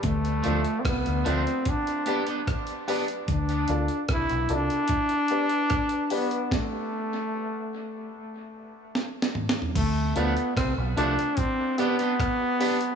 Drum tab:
CC |------------------------------------------------|------------------------------------------------|------------------------------------------------|x-----------------------------------------------|
HH |x--x--x--x--x--x--x--x--x--x--x--x--x--x--o--x--|x--x--x--x--x--x--x--x--x--x--x--x--x--x--o--x--|------------------------------------------------|x-----x--x--x-----x--x--x-----x--x--x-----o--x--|
SD |------------r-----------------------r-----------|------------r-----------------------r-----------|o-----------------------------------o---o---o---|------------r-----------------------r-----------|
T2 |------------------------------------------------|------------------------------------------------|------------------------------------------o-----|------------------------------------------------|
FT |------------------------------------------------|------------------------------------------------|----------------------------------------------o-|------------------------------------------------|
BD |o-----------o-----------o-----------o-----------|o-----------o-----------o-----------o-----------|o-----------------------------------------------|o-----------o-----------o-----------o-----------|